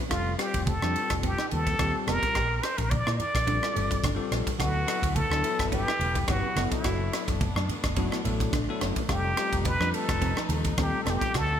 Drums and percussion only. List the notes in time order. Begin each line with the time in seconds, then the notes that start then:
0.11 kick, cross-stick, ride, muted conga
0.39 cross-stick, ride
0.54 kick, ride
0.66 kick, ride, high conga
0.82 cross-stick
0.96 ride
1.10 kick, cross-stick, ride
1.23 kick, ride, muted conga
1.38 cross-stick
1.51 ride, muted conga, high conga
1.67 kick, ride
1.79 kick, cross-stick, ride
2.07 cross-stick, ride, muted conga, high conga
2.23 kick, ride
2.35 kick, cross-stick, ride, muted conga
2.63 cross-stick, ride
2.78 kick, ride
2.91 kick, ride, high conga
3.07 cross-stick
3.20 ride, low conga
3.35 kick, cross-stick, ride
3.47 kick, ride, muted conga
3.63 cross-stick
3.76 ride, muted conga, low conga
3.91 kick, ride
4.04 kick, cross-stick, ride, high conga
4.32 cross-stick, ride
4.47 kick, ride
4.60 kick, cross-stick, ride
4.88 cross-stick, ride
5.03 kick, ride
5.16 kick, ride, high conga
5.32 cross-stick
5.44 ride
5.59 kick, cross-stick, ride
5.72 kick, ride, muted conga
5.88 cross-stick
6.01 ride, muted conga, high conga
6.15 kick, ride
6.28 kick, cross-stick, ride
6.56 cross-stick, ride, muted conga, high conga
6.72 kick, ride
6.84 kick, cross-stick, ride, muted conga
7.13 cross-stick, ride
7.28 kick, ride
7.41 kick, ride, high conga
7.56 cross-stick
7.69 ride, low conga
7.84 kick, cross-stick, ride
7.96 kick, ride, muted conga
8.12 cross-stick
8.25 ride, muted conga, low conga
8.40 kick, ride
8.53 kick, cross-stick, ride, high conga
8.80 cross-stick, ride, muted conga
8.96 kick, ride
9.08 kick, cross-stick, ride, muted conga
9.37 cross-stick, ride
9.53 kick, ride
9.65 kick, ride, high conga
9.81 cross-stick
9.94 ride
10.09 kick, cross-stick, ride
10.21 kick, ride, muted conga
10.37 cross-stick
10.49 ride, muted conga, high conga
10.64 kick, ride
10.78 kick, cross-stick, ride
11.06 cross-stick, ride, muted conga, high conga
11.21 kick, ride
11.34 kick, cross-stick, ride, muted conga